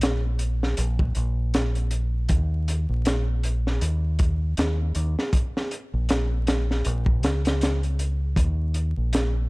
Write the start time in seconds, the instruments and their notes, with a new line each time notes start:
Already playing: fingered electric bass A#1
0.01 snare, closed hi-hat
0.39 closed hi-hat
0.63 snare
0.77 fingered electric bass A#1, closed hi-hat
0.99 kick
1.15 fingered electric bass A#1, closed hi-hat
1.54 snare, closed hi-hat
1.75 closed hi-hat
1.91 closed hi-hat
2.29 fingered electric bass D#2, kick, closed hi-hat
2.68 closed hi-hat
2.89 fingered electric bass A#1
3.05 snare, closed hi-hat
3.43 closed hi-hat
3.67 snare
3.81 fingered electric bass D#2, closed hi-hat
4.19 kick, closed hi-hat
4.57 fingered electric bass D#2, snare, closed hi-hat
4.95 fingered electric bass D#2, closed hi-hat
5.19 snare
5.33 kick, closed hi-hat
5.57 snare
5.71 closed hi-hat
5.93 fingered electric bass A#1
6.09 snare, closed hi-hat
6.47 snare, closed hi-hat
6.71 snare
6.85 fingered electric bass A#1, closed hi-hat
7.06 kick
7.23 fingered electric bass C#2, snare, closed hi-hat
7.45 snare, closed hi-hat
7.61 snare, closed hi-hat
7.83 closed hi-hat
7.99 closed hi-hat
8.36 fingered electric bass D#2, kick, closed hi-hat
8.74 closed hi-hat
8.97 fingered electric bass A#1
9.13 snare, closed hi-hat